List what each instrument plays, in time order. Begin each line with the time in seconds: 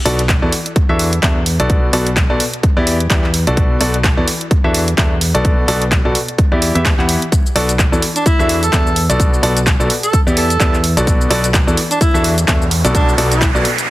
0.05 fingered electric bass B1, grand piano B2 B3 F#4 A4 D5, open hi-hat
0.19 closed hi-hat
0.29 kick, clap, closed hi-hat
0.42 fingered electric bass E2, grand piano E3 B3 F#4 A4 D5
0.52 open hi-hat
0.66 closed hi-hat
0.76 kick, closed hi-hat
0.89 fingered electric bass E2, grand piano E3 D4 F#4 A4 E5
0.99 open hi-hat
1.13 closed hi-hat
1.23 fingered electric bass E2, grand piano B2 D4 F#4 A4 E5, kick, clap, closed hi-hat
1.46 open hi-hat
1.60 fingered electric bass B1, grand piano B2 B3 F#4 A4 D5, closed hi-hat
1.70 kick, closed hi-hat
1.93 fingered electric bass B1, grand piano B2 B3 F#4 A4 D5, open hi-hat
2.07 closed hi-hat
2.16 kick, clap, closed hi-hat
2.30 fingered electric bass B1, grand piano B2 B3 F#4 A4 D5
2.40 open hi-hat
2.54 closed hi-hat
2.63 kick, closed hi-hat
2.77 fingered electric bass E2, grand piano E3 B3 E4 G4 D5
2.87 open hi-hat
3.00 closed hi-hat
3.10 fingered electric bass E2, grand piano E3 B3 E4 G4 D5, kick, clap, closed hi-hat
3.24 clap
3.34 open hi-hat
3.47 fingered electric bass B1, grand piano B2 B3 F#4 A4 D5, closed hi-hat
3.57 kick, closed hi-hat
3.81 fingered electric bass B1, grand piano B2 B3 F#4 A4 D5, open hi-hat
3.94 closed hi-hat
4.04 kick, clap, closed hi-hat
4.17 fingered electric bass E2, grand piano E3 B3 F#4 A4 D5
4.28 open hi-hat
4.41 closed hi-hat
4.51 kick, closed hi-hat
4.64 fingered electric bass E2, grand piano E3 D4 F#4 A4 E5
4.74 open hi-hat
4.88 closed hi-hat
4.98 fingered electric bass E2, grand piano B2 D4 F#4 A4 E5, kick, clap, closed hi-hat
5.21 open hi-hat
5.34 fingered electric bass B1, grand piano B2 B3 F#4 A4 D5, closed hi-hat
5.45 kick, closed hi-hat
5.68 fingered electric bass B1, grand piano B2 B3 F#4 A4 D5, open hi-hat
5.82 closed hi-hat
5.92 kick, clap, closed hi-hat
6.05 fingered electric bass B1, grand piano B2 B3 F#4 A4 D5
6.15 open hi-hat
6.28 closed hi-hat
6.38 kick, closed hi-hat
6.52 fingered electric bass E2, grand piano E3 B3 E4 G4 D5
6.62 open hi-hat
6.75 fingered electric bass E2, grand piano E3 B3 E4 G4 E5, closed hi-hat
6.85 kick, clap, closed hi-hat
6.99 fingered electric bass E2, grand piano E3 B3 E4 G4 F#5, clap
7.09 open hi-hat
7.22 closed hi-hat
7.32 kick, closed hi-hat, shaker
7.46 shaker
7.56 fingered electric bass B1, grand piano B2 B3 F#4 A4 D5, open hi-hat
7.69 closed hi-hat, shaker
7.79 kick, clap, closed hi-hat, shaker
7.92 fingered electric bass E2, grand piano E3 B3 F#4 A4 D5, shaker
8.02 open hi-hat
8.16 tenor saxophone D4, closed hi-hat, shaker
8.26 tenor saxophone E4, kick, closed hi-hat, shaker
8.39 fingered electric bass E2, grand piano E3 D4 F#4 A4 E5, shaker
8.49 open hi-hat
8.63 tenor saxophone A4, closed hi-hat, shaker
8.73 fingered electric bass E2, grand piano B2 D4 F#4 A4 E5, kick, clap, closed hi-hat, shaker
8.87 shaker
8.96 open hi-hat
9.10 fingered electric bass B1, grand piano B2 B3 F#4 A4 D5, closed hi-hat, shaker
9.20 kick, closed hi-hat, shaker
9.34 shaker
9.43 fingered electric bass B1, grand piano B2 B3 F#4 A4 D5, open hi-hat
9.57 closed hi-hat, shaker
9.66 kick, clap, closed hi-hat, shaker
9.80 fingered electric bass B1, grand piano B2 B3 F#4 A4 D5, shaker
9.90 open hi-hat
10.03 tenor saxophone A4, closed hi-hat, shaker
10.13 kick, closed hi-hat, shaker
10.27 fingered electric bass E2, grand piano E3 B3 E4 G4 D5, shaker
10.37 tenor saxophone A4, open hi-hat
10.50 closed hi-hat, shaker
10.60 fingered electric bass E2, grand piano E3 B3 E4 G4 D5, kick, clap, closed hi-hat, shaker
10.74 clap, shaker
10.84 open hi-hat
10.97 fingered electric bass B1, grand piano B2 B3 F#4 A4 D5, closed hi-hat, shaker
11.07 kick, closed hi-hat, riser, shaker
11.21 shaker
11.30 fingered electric bass B1, grand piano B2 B3 F#4 A4 D5, open hi-hat
11.44 closed hi-hat, shaker
11.54 kick, clap, closed hi-hat, shaker
11.67 fingered electric bass E2, grand piano E3 B3 F#4 A4 D5, shaker
11.77 open hi-hat
11.91 tenor saxophone D4, closed hi-hat, shaker
12.01 tenor saxophone E4, kick, closed hi-hat, shaker
12.14 fingered electric bass E2, grand piano E3 D4 F#4 A4 E5, shaker
12.24 open hi-hat
12.38 closed hi-hat, shaker
12.48 grand piano B2 D4 F#4 A4 E5, kick, clap, closed hi-hat, shaker
12.62 shaker
12.71 open hi-hat
12.85 fingered electric bass B1, grand piano B2 B3 F#4 A4 D5, closed hi-hat, shaker
12.95 tenor saxophone D4, kick, closed hi-hat, shaker
13.09 shaker
13.18 fingered electric bass B1, grand piano B2 B3 F#4 A4 D5, open hi-hat
13.31 tenor saxophone E4, closed hi-hat, shaker
13.42 kick, clap, closed hi-hat, shaker
13.55 fingered electric bass B1, grand piano B2 B3 F#4 A4 D5, shaker
13.65 open hi-hat
13.78 closed hi-hat, shaker